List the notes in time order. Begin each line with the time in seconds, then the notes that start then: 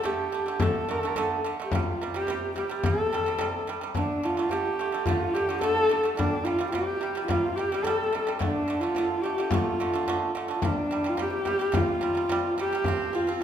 0.04 D3 A3 G4, frame drum
0.32 D3 A3
0.46 D3 A3
0.60 D3 A3 A4, frame drum
0.89 D3 A3, frame drum
1.03 D3 A3
1.16 D3 A3, frame drum
1.44 D3 A3, frame drum
1.60 D3 A3
1.64 G4
1.72 C3 G3 F4, frame drum
2.00 C3 G3, frame drum
2.14 C3 G3 G4
2.27 C3 G3, frame drum
2.56 C3 G3 G4, frame drum
2.69 C3 G3
2.83 C3 G3 A4, frame drum
3.12 C3 G3, frame drum
3.26 C3 G3
3.38 C3 G3, frame drum
3.67 C3 G3, frame drum
3.81 C3 G3
3.95 D3 A3 D4, frame drum
4.22 D3 A3 F4, frame drum
4.37 D3 A3
4.49 D3 A3 G4, frame drum
4.79 D3 A3
4.92 D3 A3
5.06 D3 A3 F4, frame drum
5.33 D3 A3 G4, frame drum
5.49 D3 A3
5.61 D3 A3 A4, frame drum
5.89 D3 A3, frame drum
6.03 D3 A3
6.16 C3 G3 D4, frame drum
6.44 C3 G3 F4, frame drum
6.59 C3 G3
6.71 C3 G3 G4, frame drum
7.01 C3 G3
7.15 C3 G3
7.27 C3 G3 F4, frame drum
7.55 C3 G4, frame drum
7.59 G3
7.72 C3 G3
7.83 C3 G3 A4, frame drum
8.13 C3 G3, frame drum
8.27 C3 G3
8.39 D3 A3 D4, frame drum
8.68 D3 A3, frame drum
8.80 D3 A3 F4
8.95 D3 A3, frame drum
9.22 D3 A3 G4
9.38 D3 A3
9.50 D3 A3 F4, frame drum
9.79 D3 A3, frame drum
9.94 D3 A3
10.08 D3 A3, frame drum
10.35 D3 A3, frame drum
10.48 D3 A3
10.55 F4
10.62 C3 G3, frame drum
10.66 D4
10.90 C3 G3, frame drum
11.04 C3 G3
11.09 F4
11.17 C3 G3, frame drum
11.22 G4
11.34 G4
11.45 C3 G3, frame drum
11.59 C3 G3
11.72 C3 G3, frame drum
11.76 F4
12.01 C3 G3, frame drum
12.15 C3 G3
12.29 C3 G3, frame drum
12.57 C3 G3 G4, frame drum
12.73 C3 G3
12.84 F3 C4, frame drum
13.13 F3 C4 F4
13.27 F3 C4, frame drum